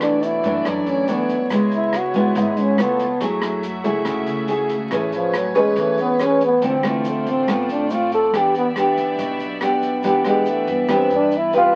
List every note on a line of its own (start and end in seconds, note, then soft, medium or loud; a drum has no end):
0.00 0.39 B1 medium
0.00 0.63 B2 medium
0.00 0.40 E3 medium
0.00 0.41 A3 medium
0.00 1.49 A3 medium
0.00 0.41 D4 soft
0.00 0.26 D4 medium
0.00 1.49 E4 medium
0.00 3.18 C#5 medium
0.00 1.49 D5 medium
0.00 cross-stick medium
0.00 closed hi-hat soft
0.00 shaker soft
0.23 0.70 E4 medium
0.23 closed hi-hat soft
0.23 shaker medium
0.44 0.63 F#2 medium
0.44 1.04 E3 medium
0.44 1.05 A3 medium
0.44 1.05 D4 medium
0.44 kick soft
0.44 closed hi-hat soft
0.44 shaker soft
0.65 0.85 F#2 loud
0.65 1.48 F#2 medium
0.65 kick medium
0.65 cross-stick medium
0.65 closed hi-hat medium
0.65 shaker medium
0.69 0.90 D4 medium
0.87 1.13 C#4 medium
0.87 closed hi-hat soft
0.87 shaker soft
1.08 1.35 E3 soft
1.08 1.35 A3 soft
1.08 1.52 B3 medium
1.08 1.36 D4 medium
1.08 closed hi-hat soft
1.08 shaker medium
1.29 kick soft
1.29 closed hi-hat soft
1.29 shaker soft
1.50 2.10 C#2 medium
1.50 2.34 C#3 soft
1.50 1.93 G#3 medium
1.50 1.93 B3 medium
1.50 3.20 B3 medium
1.50 2.77 E4 medium
1.50 1.93 E4 medium
1.50 2.78 G#4 medium
1.50 kick medium
1.50 cross-stick medium
1.50 closed hi-hat medium
1.50 shaker medium
1.71 1.98 E4 medium
1.71 closed hi-hat soft
1.71 shaker soft
1.93 cross-stick medium
1.93 closed hi-hat soft
1.93 shaker medium
1.97 2.41 F#4 medium
2.14 2.34 G#1 loud
2.14 2.75 G#3 medium
2.14 2.75 B3 medium
2.14 2.76 E4 medium
2.14 kick soft
2.14 closed hi-hat soft
2.14 shaker soft
2.35 2.55 G#1 loud
2.35 2.76 G#2 medium
2.35 kick medium
2.35 closed hi-hat medium
2.35 shaker medium
2.40 2.62 E4 medium
2.56 2.76 G#1 medium
2.56 2.83 C#4 medium
2.56 closed hi-hat soft
2.56 shaker soft
2.78 3.18 C#2 medium
2.78 3.06 A3 medium
2.78 3.06 B3 soft
2.78 3.23 B3 medium
2.78 3.06 F4 medium
2.78 3.21 F4 medium
2.78 3.21 A4 medium
2.78 cross-stick medium
2.78 closed hi-hat soft
2.78 shaker medium
2.99 kick soft
2.99 closed hi-hat soft
2.99 shaker soft
3.20 3.81 F#2 medium
3.20 4.04 F#3 medium
3.20 3.63 A3 medium
3.20 6.59 A3 medium
3.20 3.63 E4 medium
3.20 4.90 F#4 medium
3.20 3.63 G#4 medium
3.20 6.59 G#4 medium
3.20 4.90 E5 medium
3.20 kick medium
3.20 closed hi-hat medium
3.20 shaker medium
3.42 cross-stick medium
3.42 closed hi-hat soft
3.42 shaker soft
3.63 closed hi-hat soft
3.63 shaker medium
3.84 4.04 C#2 loud
3.84 4.45 A3 medium
3.84 4.45 E4 medium
3.84 4.45 G#4 medium
3.84 kick soft
3.84 closed hi-hat soft
3.84 shaker soft
4.05 4.26 C#2 loud
4.05 4.89 C#3 medium
4.05 kick medium
4.05 cross-stick medium
4.05 closed hi-hat medium
4.05 shaker medium
4.26 4.87 C#2 medium
4.26 closed hi-hat soft
4.26 shaker soft
4.48 4.76 A3 medium
4.48 4.76 E4 medium
4.48 4.76 G#4 medium
4.48 closed hi-hat soft
4.48 shaker medium
4.69 kick soft
4.69 closed hi-hat soft
4.69 shaker soft
4.91 5.51 A1 medium
4.91 5.13 E3 medium
4.91 5.74 A3 medium
4.91 5.34 C#4 medium
4.91 5.34 G#4 medium
4.91 6.60 B4 medium
4.91 5.34 B4 medium
4.91 6.61 C#5 medium
4.91 kick medium
4.91 cross-stick medium
4.91 closed hi-hat medium
4.91 shaker medium
5.12 5.39 F3 medium
5.12 closed hi-hat soft
5.12 shaker soft
5.34 cross-stick medium
5.34 closed hi-hat soft
5.34 shaker medium
5.38 5.56 F#3 medium
5.55 5.75 E2 loud
5.55 5.82 G#3 medium
5.55 6.16 C#4 medium
5.55 6.16 G#4 medium
5.55 6.16 B4 medium
5.55 kick soft
5.55 closed hi-hat soft
5.55 shaker soft
5.76 5.96 E2 medium
5.76 6.60 E3 medium
5.76 kick medium
5.76 closed hi-hat soft
5.76 shaker medium
5.80 6.00 A3 medium
5.98 6.58 E2 medium
5.98 6.25 B3 loud
5.98 closed hi-hat soft
5.98 shaker soft
6.19 6.47 C#4 medium
6.19 6.47 G#4 soft
6.19 6.47 B4 medium
6.19 cross-stick medium
6.19 closed hi-hat soft
6.19 shaker medium
6.24 6.43 C#4 medium
6.41 kick soft
6.41 closed hi-hat soft
6.41 shaker soft
6.45 6.68 B3 medium
6.61 7.22 D2 medium
6.61 7.45 D3 soft
6.61 8.30 A3 medium
6.61 6.74 A3 medium
6.61 6.74 C4 medium
6.61 8.31 F4 medium
6.61 6.75 F4 medium
6.61 8.30 C5 medium
6.61 11.70 D5 medium
6.61 kick medium
6.61 closed hi-hat medium
6.61 shaker medium
6.67 6.86 C4 medium
6.83 7.44 A3 medium
6.83 7.44 C4 medium
6.83 7.44 F4 medium
6.83 cross-stick medium
6.83 closed hi-hat soft
6.83 shaker soft
6.88 7.11 E3 medium
7.05 closed hi-hat soft
7.05 shaker medium
7.09 7.32 A3 medium
7.26 7.46 A1 medium
7.26 kick soft
7.26 closed hi-hat soft
7.26 shaker soft
7.30 7.53 C4 medium
7.47 7.67 A1 medium
7.47 8.31 A2 medium
7.47 7.87 A3 medium
7.47 7.71 B3 medium
7.47 7.87 C4 medium
7.47 7.87 F4 medium
7.47 kick soft
7.47 cross-stick medium
7.47 closed hi-hat medium
7.47 shaker medium
7.69 8.29 A1 medium
7.69 7.95 D4 medium
7.69 closed hi-hat soft
7.69 shaker soft
7.90 8.30 A3 soft
7.90 8.30 C4 soft
7.90 8.30 F4 medium
7.90 8.13 F4 medium
7.90 closed hi-hat soft
7.90 shaker medium
8.12 8.39 A4 medium
8.12 kick soft
8.12 closed hi-hat soft
8.12 shaker soft
8.33 8.93 E2 medium
8.33 9.16 E3 medium
8.33 8.61 B3 soft
8.33 10.02 B3 medium
8.33 8.61 D4 medium
8.33 10.02 G4 medium
8.33 8.61 G4 medium
8.33 10.02 E5 medium
8.33 kick medium
8.33 cross-stick medium
8.33 closed hi-hat medium
8.33 shaker medium
8.38 8.57 G4 medium
8.55 8.69 B3 medium
8.55 closed hi-hat soft
8.55 shaker soft
8.76 9.58 B3 medium
8.76 9.58 D4 medium
8.76 9.58 G4 medium
8.76 cross-stick medium
8.76 closed hi-hat soft
8.76 shaker medium
8.97 9.17 B1 medium
8.97 kick soft
8.97 closed hi-hat soft
8.97 shaker soft
9.18 9.38 B1 loud
9.18 10.02 B2 medium
9.18 kick medium
9.18 closed hi-hat medium
9.18 shaker medium
9.39 9.99 B1 medium
9.39 closed hi-hat soft
9.39 shaker soft
9.61 10.01 B3 medium
9.61 10.01 D4 medium
9.61 10.01 G4 medium
9.61 cross-stick medium
9.61 closed hi-hat soft
9.61 shaker medium
9.82 kick soft
9.82 closed hi-hat soft
9.82 shaker soft
10.03 10.64 E2 medium
10.03 10.87 E3 medium
10.03 10.22 B3 medium
10.03 10.22 D4 medium
10.03 10.22 G4 medium
10.03 11.75 B4 medium
10.03 11.72 E5 medium
10.03 kick medium
10.03 closed hi-hat medium
10.03 shaker medium
10.24 10.51 G#3 medium
10.24 10.86 B3 medium
10.24 10.86 D4 medium
10.24 10.86 G4 medium
10.24 cross-stick medium
10.24 closed hi-hat soft
10.24 shaker soft
10.45 closed hi-hat soft
10.45 shaker medium
10.50 10.69 A3 medium
10.67 10.87 G2 loud
10.67 10.95 B3 medium
10.67 kick soft
10.67 closed hi-hat soft
10.67 shaker soft
10.88 11.09 G2 loud
10.88 11.72 E3 medium
10.88 11.31 B3 medium
10.88 11.32 D4 medium
10.88 11.32 G4 medium
10.88 kick medium
10.88 cross-stick medium
10.88 closed hi-hat medium
10.88 shaker medium
10.93 11.13 C4 medium
11.10 11.70 G2 medium
11.10 closed hi-hat soft
11.10 shaker soft
11.15 11.39 D4 medium
11.31 closed hi-hat soft
11.31 shaker medium
11.37 11.56 E4 medium
11.53 11.75 C4 medium
11.53 11.75 G4 medium
11.53 11.75 B4 medium
11.53 kick soft
11.53 closed hi-hat soft
11.53 shaker soft
11.57 11.75 F4 loud